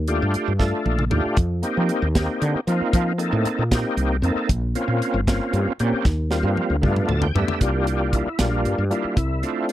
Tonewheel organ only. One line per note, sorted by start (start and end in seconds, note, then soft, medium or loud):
0.08 0.53 A3 medium
0.08 0.53 D4 medium
0.08 0.53 F4 medium
0.08 0.53 G4 medium
0.59 1.04 A3 medium
0.59 1.05 D4 medium
0.59 1.05 F4 medium
0.59 1.05 A4 medium
1.10 1.37 A3 medium
1.10 1.37 D4 medium
1.10 1.37 F4 medium
1.10 1.37 G4 medium
1.62 2.08 A#3 medium
1.62 2.09 C4 medium
1.62 2.08 D#4 medium
1.62 2.09 G4 medium
2.15 2.60 A#3 medium
2.15 2.61 C4 medium
2.15 2.60 D#4 medium
2.15 2.61 G4 medium
2.68 3.13 A#3 medium
2.68 3.13 C4 medium
2.68 3.13 D#4 medium
2.68 3.13 F4 medium
3.18 3.64 A#3 medium
3.18 3.64 C4 medium
3.18 3.64 D#4 medium
3.18 3.64 A4 medium
3.72 4.17 A#3 medium
3.72 4.17 C4 medium
3.72 4.17 D#4 medium
3.72 4.17 G4 medium
4.23 4.50 A#3 medium
4.23 4.49 C4 medium
4.23 4.50 D#4 medium
4.23 4.50 A4 medium
4.75 5.20 A#3 medium
4.75 5.21 C4 medium
4.75 5.21 C#4 medium
4.75 5.21 F4 medium
5.28 5.73 A#3 medium
5.28 5.73 C4 medium
5.28 5.73 C#4 medium
5.28 5.73 F4 medium
5.80 6.06 A#3 medium
5.80 6.06 C4 medium
5.80 6.06 C#4 medium
5.80 6.06 G4 medium
6.31 6.76 G3 medium
6.31 6.76 A#3 medium
6.31 6.76 C4 medium
6.31 6.77 F4 medium
6.82 7.28 A3 medium
6.82 7.28 B3 medium
6.82 7.28 D4 medium
6.82 7.28 F4 medium
7.08 7.21 A5 medium
7.22 7.34 G5 medium
7.35 7.61 A3 medium
7.35 7.61 B3 medium
7.35 7.60 D4 medium
7.35 7.61 G4 medium
7.35 7.59 E5 medium
7.61 8.29 G3 medium
7.61 8.29 A#3 medium
7.61 8.29 D4 medium
7.61 8.29 F4 medium
7.61 8.11 G4 medium
8.14 8.39 E4 medium
8.38 8.84 G3 medium
8.38 8.84 A#3 medium
8.38 8.85 D4 medium
8.38 8.84 F4 medium
8.90 9.17 G3 medium
8.90 9.17 A#3 medium
8.90 9.17 D4 medium
8.90 9.66 E4 medium
8.90 9.17 F4 medium
9.43 9.72 A3 medium
9.43 9.72 C4 medium
9.43 9.72 D4 medium
9.43 9.72 F4 medium